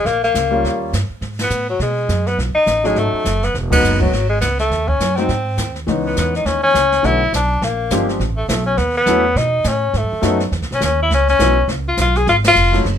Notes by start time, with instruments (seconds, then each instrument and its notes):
0.05 upright bass A#1, tenor saxophone A#3, brush sweep, kick, snare
0.24 tenor saxophone A#3, snare
0.34 upright bass C#2, kick, snare, hi-hat pedal
0.51 grand piano G3 A#3 C#4 F4
0.64 upright bass D#2, brush sweep, kick, snare
0.93 upright bass G2, kick, snare, hi-hat pedal
1.10 muted upright bass stroke
1.21 upright bass G#2, brush sweep, kick, snare
1.39 snare, ride
1.43 tenor saxophone B3
1.50 upright bass A2, hi-hat pedal
1.69 tenor saxophone F#3
1.79 upright bass B2, tenor saxophone G#3, brush sweep, kick, snare
2.08 upright bass F#2, kick, snare, hi-hat pedal
2.26 tenor saxophone B3, snare
2.38 upright bass B1, brush sweep, kick, snare
2.55 tenor saxophone D#4, muted upright bass stroke
2.66 upright bass A1, kick, snare, hi-hat pedal
2.84 grand piano F#3 A3 C#4 D#4, tenor saxophone G#3, snare
2.96 upright bass G#1, tenor saxophone A3, brush sweep, kick, snare
3.13 muted upright bass stroke
3.24 upright bass F#1, kick, snare, hi-hat pedal
3.43 tenor saxophone B3, snare
3.54 upright bass E1, brush sweep, kick, snare
3.71 grand piano F#3 G#3 B3 D#4, tenor saxophone B3, kick, ride
3.82 upright bass F#1, hi-hat pedal
4.00 grand piano F#3 G#3 B3 F#4, tenor saxophone F#3, kick
4.12 upright bass G#1, brush sweep, snare
4.29 tenor saxophone G#3
4.41 upright bass C#2, tenor saxophone B3, kick, snare, hi-hat pedal
4.59 tenor saxophone A3, snare
4.70 upright bass D#2, brush sweep, kick, snare
4.88 tenor saxophone C#4, kick
5.00 upright bass F#2, kick, snare, hi-hat pedal
5.15 grand piano F#3 G#3 C4 D#4, tenor saxophone C4, snare
5.28 upright bass G#2, brush sweep, kick, snare
5.57 upright bass D#2, kick, snare, hi-hat pedal
5.75 snare
5.87 upright bass C#2, grand piano E3 G#3 B3 C#4 D#4, brush sweep, kick, snare
6.07 tenor saxophone B3
6.16 upright bass E2, tenor saxophone B3, kick, snare, hi-hat pedal
6.35 tenor saxophone D#4, snare
6.45 upright bass D#2, tenor saxophone C#4, brush sweep, kick, snare
6.63 tenor saxophone C#4
6.74 upright bass C#2, kick, snare, hi-hat pedal
6.92 snare
7.03 upright bass B1, grand piano D3 A3 B3 C#4 F#4, tenor saxophone E4, brush sweep, kick, snare
7.32 upright bass B1, tenor saxophone D4, kick, snare, hi-hat pedal
7.62 upright bass A#1, tenor saxophone A#3, brush sweep, kick, snare
7.90 upright bass G1, grand piano F3 G#3 C4 D4 G4, kick, snare, hi-hat pedal
8.09 snare
8.19 upright bass A1, brush sweep, kick, snare
8.37 tenor saxophone A3
8.48 upright bass B1, tenor saxophone A3, kick, snare, hi-hat pedal
8.66 tenor saxophone C#4
8.77 upright bass D#2, tenor saxophone B3, brush sweep, kick, snare
8.97 tenor saxophone B3
9.06 upright bass E2, grand piano F#3 A3 B3 C#4 E4, kick, snare, hi-hat pedal
9.35 upright bass B2, tenor saxophone D#4, brush sweep, kick, snare
9.64 upright bass A2, tenor saxophone C#4, kick, snare, hi-hat pedal
9.94 upright bass G#2, tenor saxophone A3, brush sweep, kick, snare
10.03 upright bass F#2
10.12 upright bass D#2
10.21 upright bass F#2, grand piano F#3 A3 B3 C#4 D#4, kick, snare, hi-hat pedal
10.40 snare
10.51 upright bass E2, brush sweep, kick, snare
10.60 upright bass C#2, snare
10.71 upright bass B1, tenor saxophone C#4, snare
10.81 upright bass D#2, tenor saxophone C#4, kick, snare, hi-hat pedal
11.03 tenor saxophone E4
11.10 upright bass C#2, brush sweep, kick, snare
11.14 tenor saxophone C#4
11.28 tenor saxophone C#4, snare
11.39 upright bass B1, grand piano F#3 G#3 B3 C#4 E4, kick, snare, hi-hat pedal
11.68 upright bass C#2, brush sweep, kick, snare
11.88 tenor saxophone F4
11.97 upright bass B1, tenor saxophone F4, kick, snare, hi-hat pedal
12.15 tenor saxophone G#4, snare
12.27 upright bass G#1, tenor saxophone F4, brush sweep, kick, snare
12.44 tenor saxophone F4, snare, ride
12.55 upright bass F1, hi-hat pedal
12.72 grand piano F#3 G#3 A3 C#4 E4, snare
12.85 upright bass F#1, brush sweep, kick, snare